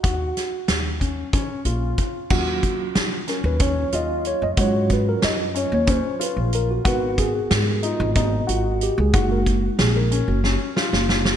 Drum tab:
CC |--------------|x-------------|--------------|--------------|
HH |x-x-x-x-x-x-x-|--x-x-x-x-x-x-|x-x-x-x-x-x-x-|x-x-x-x-x-x-x-|
SD |--o-o---------|----o-o-------|----o---------|----o---------|
BD |o-----o-o---o-|o-o-----o-----|o-o-----o-----|o-o-----o-----|

CC |--------------|
HH |x-x-x-x-------|
SD |----o---o-oooo|
BD |o-o-----------|